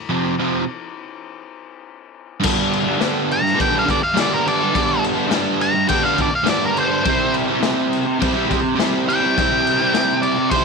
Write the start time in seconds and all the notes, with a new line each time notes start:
0.09 F2 C3 F3
0.39 F2 C3 F3
2.40 G2 D3 G3 B3, crash
2.44 D4, kick
2.73 crash
2.84 B3 D4
2.90 G3
2.98 G2 D3 G3 B3, snare, crash
3.03 D4
3.31 A#5, crash
3.42 muted overdriven electric guitar stroke, snare
3.55 D3 G3 B3
3.60 D4 G5, kick, crash
3.70 B3 D4
3.76 G3 F5
3.85 D3 G3, kick
3.89 B3 D4 D5, crash
4.01 F5, muted overdriven electric guitar stroke
4.14 G2 D3 G3 B3, snare, crash
4.19 D4 D5
4.33 A#4
4.43 D3 G3 B3
4.47 D4 D5, crash
4.58 D4
4.62 G3 B3
4.72 G2 D3 G3 B3, kick, crash
4.77 D4
5.04 crash
5.15 B3 D4
5.20 G3
5.29 G2 D3 G3, snare, crash
5.33 B3 D4
5.61 A#5, crash
5.74 muted overdriven electric guitar stroke
5.88 D3 G3 B3 G5, kick, crash
5.93 D4
6.01 B3 D4 F5
6.07 G3
6.14 D3 G3 B3
6.18 D4 D5, kick, crash
6.31 muted overdriven electric guitar stroke
6.35 F5
6.43 G2 D3 G3 B3, snare, crash
6.48 D4 D5
6.65 A#4
6.73 D3 G3, crash
6.77 B3 D4 C5
6.88 B3 D4
6.93 G3
7.03 C3 G3 C4, kick, crash
7.09 E4
7.34 crash
7.48 C4 E4
7.52 G3
7.60 C3 G3, snare, crash
7.64 C4 E4
7.93 crash
8.06 muted overdriven electric guitar stroke
8.20 C3 G3 C4, kick, crash
8.24 E4
8.33 C4 E4
8.38 G3
8.47 C3 G3 C4, kick
8.51 E4, crash
8.62 muted overdriven electric guitar stroke
8.76 C3 G3 C4, snare
8.80 E4, crash
9.07 C3 G3 C4 G5, crash
9.12 E4
9.21 C4 E4
9.26 G3
9.37 C3 G3 C4, kick, crash
9.42 E4
9.67 crash
9.79 C4 E4
9.84 G3
9.93 C3 G3 C4, snare, crash
9.98 E4
10.22 D5, crash
10.38 muted overdriven electric guitar stroke
10.50 C3 G3 C5, kick, crash
10.55 C4 E4